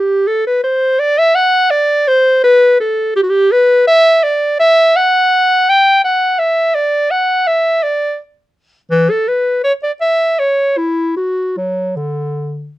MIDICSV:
0, 0, Header, 1, 2, 480
1, 0, Start_track
1, 0, Tempo, 721154
1, 183, Time_signature, 3, 2, 24, 8
1, 6421, Tempo, 744417
1, 6901, Tempo, 780234
1, 8374, End_track
2, 0, Start_track
2, 0, Title_t, "Clarinet"
2, 0, Program_c, 0, 71
2, 0, Note_on_c, 0, 67, 82
2, 179, Note_on_c, 0, 69, 95
2, 189, Note_off_c, 0, 67, 0
2, 302, Note_off_c, 0, 69, 0
2, 309, Note_on_c, 0, 71, 81
2, 418, Note_off_c, 0, 71, 0
2, 422, Note_on_c, 0, 72, 88
2, 662, Note_on_c, 0, 74, 107
2, 672, Note_off_c, 0, 72, 0
2, 788, Note_on_c, 0, 76, 98
2, 798, Note_off_c, 0, 74, 0
2, 897, Note_on_c, 0, 78, 105
2, 907, Note_off_c, 0, 76, 0
2, 1135, Note_on_c, 0, 74, 102
2, 1145, Note_off_c, 0, 78, 0
2, 1382, Note_on_c, 0, 72, 99
2, 1392, Note_off_c, 0, 74, 0
2, 1617, Note_off_c, 0, 72, 0
2, 1621, Note_on_c, 0, 71, 105
2, 1860, Note_off_c, 0, 71, 0
2, 1863, Note_on_c, 0, 69, 83
2, 2099, Note_off_c, 0, 69, 0
2, 2103, Note_on_c, 0, 67, 93
2, 2147, Note_on_c, 0, 66, 78
2, 2157, Note_off_c, 0, 67, 0
2, 2191, Note_on_c, 0, 67, 100
2, 2201, Note_off_c, 0, 66, 0
2, 2341, Note_on_c, 0, 71, 105
2, 2351, Note_off_c, 0, 67, 0
2, 2572, Note_off_c, 0, 71, 0
2, 2576, Note_on_c, 0, 76, 108
2, 2816, Note_on_c, 0, 74, 90
2, 2826, Note_off_c, 0, 76, 0
2, 3054, Note_off_c, 0, 74, 0
2, 3058, Note_on_c, 0, 76, 105
2, 3302, Note_on_c, 0, 78, 101
2, 3312, Note_off_c, 0, 76, 0
2, 3788, Note_on_c, 0, 79, 108
2, 3798, Note_off_c, 0, 78, 0
2, 4017, Note_off_c, 0, 79, 0
2, 4021, Note_on_c, 0, 78, 91
2, 4252, Note_on_c, 0, 76, 89
2, 4262, Note_off_c, 0, 78, 0
2, 4491, Note_on_c, 0, 74, 103
2, 4501, Note_off_c, 0, 76, 0
2, 4730, Note_on_c, 0, 78, 90
2, 4740, Note_off_c, 0, 74, 0
2, 4972, Note_on_c, 0, 76, 100
2, 4982, Note_off_c, 0, 78, 0
2, 5211, Note_on_c, 0, 74, 86
2, 5221, Note_off_c, 0, 76, 0
2, 5452, Note_off_c, 0, 74, 0
2, 5927, Note_on_c, 0, 52, 98
2, 6058, Note_on_c, 0, 69, 80
2, 6068, Note_off_c, 0, 52, 0
2, 6174, Note_on_c, 0, 71, 80
2, 6184, Note_off_c, 0, 69, 0
2, 6411, Note_off_c, 0, 71, 0
2, 6415, Note_on_c, 0, 73, 87
2, 6470, Note_off_c, 0, 73, 0
2, 6538, Note_on_c, 0, 74, 77
2, 6592, Note_off_c, 0, 74, 0
2, 6654, Note_on_c, 0, 76, 84
2, 6899, Note_on_c, 0, 73, 76
2, 6908, Note_off_c, 0, 76, 0
2, 7134, Note_on_c, 0, 64, 72
2, 7143, Note_off_c, 0, 73, 0
2, 7373, Note_off_c, 0, 64, 0
2, 7377, Note_on_c, 0, 66, 73
2, 7623, Note_on_c, 0, 54, 65
2, 7633, Note_off_c, 0, 66, 0
2, 7867, Note_on_c, 0, 50, 61
2, 7876, Note_off_c, 0, 54, 0
2, 8342, Note_off_c, 0, 50, 0
2, 8374, End_track
0, 0, End_of_file